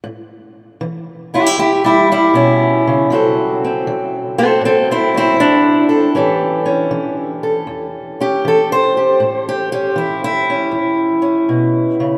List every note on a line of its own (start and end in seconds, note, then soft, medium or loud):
0.04 0.76 A2 medium
0.81 1.52 E3 medium
1.34 1.46 C#4 soft
1.34 1.45 E4 medium
1.34 1.58 G4 medium
1.46 1.58 E4 soft
1.58 2.29 E2 medium
1.58 1.67 E4 medium
1.58 1.84 G4 medium
1.84 2.09 G3 medium
1.84 2.10 E4 medium
2.12 2.36 G3 medium
2.12 3.12 E4 medium
2.34 2.85 B2 medium
2.34 3.11 C#4 medium
2.87 3.10 C#3 medium
3.10 3.81 D3 medium
3.10 3.86 F#3 soft
3.10 3.62 C4 soft
3.10 4.37 F#4 medium
3.10 4.38 A4 soft
3.64 4.37 C4 soft
3.87 4.58 F#3 medium
4.38 4.63 C4 medium
4.38 6.13 F#4 soft
4.38 4.63 A4 medium
4.61 5.33 A2 medium
4.65 4.89 C4 medium
4.65 4.90 A4 medium
4.91 5.15 C4 medium
4.91 5.15 E4 medium
5.14 5.35 F#3 soft
5.14 5.40 C4 medium
5.14 5.89 E4 medium
5.36 6.09 F#3 medium
5.36 6.15 D4 medium
5.89 6.17 A4 medium
6.15 6.86 A2 medium
6.15 6.91 E3 soft
6.15 6.65 C#4 soft
6.15 8.19 G4 soft
6.15 7.43 A4 soft
6.66 8.18 C#4 soft
6.91 7.62 E3 medium
7.43 8.47 A4 soft
7.67 8.38 E2 medium
8.20 9.18 C#4 soft
8.20 8.96 G4 medium
8.45 9.15 E3 medium
8.45 8.71 A4 medium
8.72 9.47 C5 loud
8.97 9.18 G4 soft
9.20 9.91 A2 medium
9.49 9.71 G4 medium
9.72 10.48 C#4 soft
9.72 10.73 G4 medium
9.96 10.67 E3 medium
9.96 10.22 E4 medium
10.24 12.18 E4 loud
10.50 11.21 C#4 soft
10.71 11.43 E2 medium
11.22 12.18 C#4 soft
11.49 12.00 B2 medium
12.00 12.18 C#3 medium